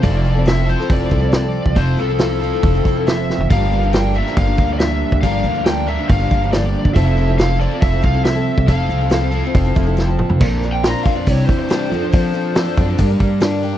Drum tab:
CC |----------------|----------------|----------------|----------------|
HH |o---o---o---o---|o---o---o---o---|o---o---o---o---|o---o---o---o---|
SD |----o--o----o---|----o-------o-o-|----o--o----o---|----o-------o---|
T2 |----------------|----------------|----------------|----------------|
FT |----------------|---------------o|----------------|----------------|
BD |o-------o-o----o|o-------o-o-----|o-------o-o----o|o-------o-o----o|

CC |----------------|----------------|x---------------|----------------|
HH |o---o---o---o---|o---o---o-------|----o---o---o---|o---o---o---o---|
SD |----o-------o---|----o-------o---|--o-o-------o---|----o-------o---|
T2 |----------------|--------------o-|----------------|----------------|
FT |----------------|---------------o|----------------|----------------|
BD |o-------o-o----o|o-------o-o-----|o-----o-o-o-----|o-----o-o-o-----|